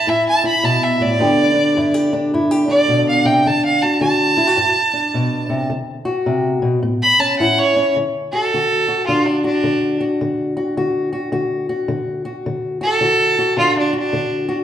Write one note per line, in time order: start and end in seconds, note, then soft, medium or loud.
0.00 0.11 A5 medium
0.07 0.59 A2 medium
0.07 0.43 E4 medium
0.07 0.26 E5 loud
0.29 0.45 A5 loud
0.44 1.20 E4 medium
0.44 0.66 B5 loud
0.63 0.99 B2 medium
0.63 0.85 A5 loud
0.83 1.03 E5 medium
1.00 1.20 A2 medium
1.00 2.10 D5 loud
1.19 1.71 G2 medium
1.19 3.45 D3 medium
1.19 3.42 B3 medium
1.19 1.54 D4 medium
1.19 1.77 G4 medium
1.54 2.13 D4 medium
1.77 2.28 G2 medium
1.77 1.94 E4 medium
1.94 2.32 G4 medium
2.13 2.68 D4 medium
2.34 2.85 G2 medium
2.34 2.51 E4 medium
2.51 3.45 G4 medium
2.68 4.40 D4 medium
2.68 3.06 D5 loud
2.88 3.24 B2 medium
3.09 3.27 F5 loud
3.25 3.45 C3 medium
3.25 3.49 G5 medium
3.46 3.97 D3 medium
3.46 3.64 A5 loud
3.65 3.84 F5 loud
3.83 4.00 F#4 medium
3.83 4.01 A5 medium
4.01 4.53 D3 medium
4.01 4.36 F#4 medium
4.01 5.66 A5 loud
4.37 4.47 E4 medium
4.47 4.57 F#4 medium
4.57 5.09 G2 medium
4.93 5.67 D4 medium
5.14 5.49 B2 medium
5.49 5.70 C3 medium
5.70 6.22 D3 medium
6.05 6.80 F#4 medium
6.26 6.61 C3 medium
6.62 6.82 B2 medium
6.83 7.34 A2 medium
7.03 7.22 B5 loud
7.19 7.75 C#4 medium
7.19 7.38 A5 medium
7.39 7.91 A2 medium
7.39 7.96 E4 medium
7.39 7.60 F#5 medium
7.59 7.94 C#5 loud
7.76 7.93 C#4 medium
7.96 8.48 D3 medium
8.32 8.54 F#4 medium
8.32 9.05 A4 loud
8.54 9.05 D3 medium
8.54 8.88 F#4 medium
8.88 9.44 F#4 medium
9.07 9.60 D3 medium
9.07 12.58 D4 medium
9.07 9.28 F4 medium
9.26 9.44 D4 medium
9.44 10.00 D4 medium
9.44 10.00 F#4 medium
9.64 10.16 D3 medium
10.00 10.56 F#4 medium
10.21 10.73 D3 medium
10.57 10.77 F#4 medium
10.77 11.29 D3 medium
10.77 11.12 F#4 medium
11.13 11.32 F#4 medium
11.32 11.85 D3 medium
11.32 11.69 F#4 medium
11.69 12.25 F#4 medium
11.88 12.41 D3 medium
12.25 12.81 F#4 medium
12.46 12.98 D3 medium
12.81 13.01 F#4 medium
12.81 13.56 A4 loud
13.01 13.54 D3 medium
13.01 13.38 F#4 medium
13.39 13.92 F#4 medium
13.57 14.10 D3 medium
13.57 14.64 D4 medium
13.57 13.77 F4 loud
13.78 13.96 D4 medium
13.93 14.47 F#4 medium
13.99 14.53 D4 loud
14.13 14.64 D3 medium
14.49 14.64 F#4 medium